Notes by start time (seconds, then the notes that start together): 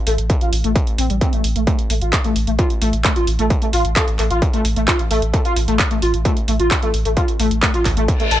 0.07 A1 A3, open hi-hat
0.18 A1, closed hi-hat
0.30 kick, closed hi-hat
0.41 A1 F4, closed hi-hat
0.53 A1, open hi-hat
0.64 A1 A3, closed hi-hat
0.76 kick, closed hi-hat
0.87 closed hi-hat
0.98 A1 C4, open hi-hat
1.10 A1 G3, closed hi-hat
1.21 C4, kick, closed hi-hat
1.33 A1 A3, closed hi-hat
1.44 A1, open hi-hat
1.56 A1 A3, closed hi-hat
1.67 A3, kick, closed hi-hat
1.79 closed hi-hat
1.90 A1 A3, open hi-hat
2.02 A1 F4, closed hi-hat
2.13 kick, clap, closed hi-hat
2.24 A1 A3, closed hi-hat
2.36 A1, open hi-hat
2.47 A1 A3, closed hi-hat
2.59 F4, kick, closed hi-hat
2.70 closed hi-hat
2.82 A1 A3, open hi-hat
2.93 A1, closed hi-hat
3.04 A3, kick, clap, closed hi-hat
3.16 A1 F4, closed hi-hat
3.27 A1, open hi-hat
3.39 A1 A3, closed hi-hat
3.50 kick, closed hi-hat
3.62 A3, closed hi-hat
3.73 A1 F4, open hi-hat
3.85 A1, closed hi-hat
3.96 A3, kick, clap, closed hi-hat
4.08 A1, closed hi-hat
4.19 A1 A3, clap, open hi-hat
4.31 A1 F4, closed hi-hat
4.42 kick, closed hi-hat
4.54 A3, closed hi-hat
4.65 A1, open hi-hat
4.76 A1 A3, closed hi-hat
4.88 F4, kick, clap, closed hi-hat
4.99 A1, closed hi-hat
5.11 A1 A3, open hi-hat
5.22 A1, closed hi-hat
5.34 A3, kick, closed hi-hat
5.45 F4, closed hi-hat
5.56 A1, open hi-hat
5.68 A1 A3, closed hi-hat
5.79 kick, clap, closed hi-hat
5.91 A1 A3, closed hi-hat
6.02 A1 F4, open hi-hat
6.14 A1, closed hi-hat
6.25 A3, kick, closed hi-hat
6.37 closed hi-hat
6.48 A1 A3, open hi-hat
6.60 A1 F4, closed hi-hat
6.71 kick, clap, closed hi-hat
6.82 A1 A3, closed hi-hat
6.94 A1, open hi-hat
7.05 A1 A3, closed hi-hat
7.17 F4, kick, closed hi-hat
7.28 closed hi-hat
7.40 A1 A3, open hi-hat
7.51 A1, closed hi-hat
7.62 A3, kick, clap, closed hi-hat
7.74 A1 F4, closed hi-hat
7.85 A1, kick, clap, open hi-hat
7.97 A1 A3, closed hi-hat
8.08 kick, closed hi-hat, reverse cymbal
8.20 A3, closed hi-hat
8.31 A1 A4, open hi-hat